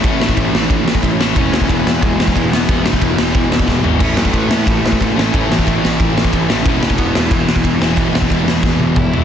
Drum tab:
CC |----------------|----------------|----------------|x---------------|
RD |x---x---x---x---|x---x---x---x---|x---x---x-------|----x---x---x---|
SD |--o---o---o---o-|--o---o---o---o-|--o---o---o-o---|--o---o---o---o-|
T1 |----------------|----------------|----------------|----------------|
T2 |----------------|----------------|----------------|----------------|
FT |----------------|----------------|--------------o-|----------------|
BD |o--oo---o--oo---|o--oo---o--oo---|o--oo---o--oo---|o--oo---o--oo---|

CC |----------------|----------------|----------------|
RD |x---x---x---x---|x---x---x---x---|x---x-----------|
SD |--o---o---o---o-|--o---o---o---o-|--o---o-o-------|
T1 |----------------|----------------|----------o-----|
T2 |----------------|----------------|------------o---|
FT |----------------|----------------|--------------o-|
BD |o--oo---o--oo---|o--oo---o--oo---|o--oo---o---o---|